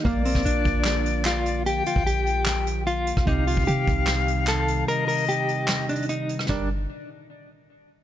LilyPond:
<<
  \new Staff \with { instrumentName = "Flute" } { \time 4/4 \key g \minor \tempo 4 = 149 d''1 | g''2. r4 | f''1 | ees''2. r4 |
d''8 r2. r8 | }
  \new Staff \with { instrumentName = "Tine electric piano" } { \time 4/4 \key g \minor <bes bes' d'' f''>1~ | <bes bes' d'' f''>1 | <c c' ees' g'>1~ | <c c' ees' g'>1 |
<g g' bes' d''>8 r2. r8 | }
  \new Staff \with { instrumentName = "Clean electric guitar" } { \time 4/4 \key g \minor bes8 c'8 d'2 f'4 | g'8 f'8 g'2 f'4 | ees'8 f'8 g'2 a'4 | bes'8 bes'8 g'4. d'8 ees'4 |
d'8 r2. r8 | }
  \new Staff \with { instrumentName = "Analog synth pad" } { \clef bass \time 4/4 \key g \minor <d f bes f'>1~ | <d f bes f'>1 | <c ees g ees'>1~ | <c ees g ees'>1 |
<bes, d g d'>8 r2. r8 | }
  \new Staff \with { instrumentName = "808-style bass" } { \clef bass \time 4/4 \key g \minor bes,,8. bes,,16 bes,,8 bes,,2~ bes,,8~ | bes,,8 r16 bes,,2. a,,16 | c,8. c,16 c8 c,2~ c,8 | r1 |
g,,4 r2. | }
  \new DrumStaff \with { instrumentName = "Drums" } \drummode { \time 4/4 <hh bd>8 hho16 <bd sn>16 hh8 <hh bd>8 <hc hh sn>8 hh8 <hc hh sn>8 hh8 | hh8 hh16 bd16 hh8 hh8 <hc hh sn>8 hh8 hh8 hh16 <bd ss>16 | <hh bd>8 hho16 bd16 hh8 <hh bd>8 <hc hh sn>8 hh8 <hc hh sn>8 hh8 | hh8 hho8 hh8 hh8 \tuplet 3/2 { <hc hh sn>16 r16 r16 hh16 hh16 hh16 } hh8 hh16 ss16 |
<bd sn>4 r4 r4 r4 | }
>>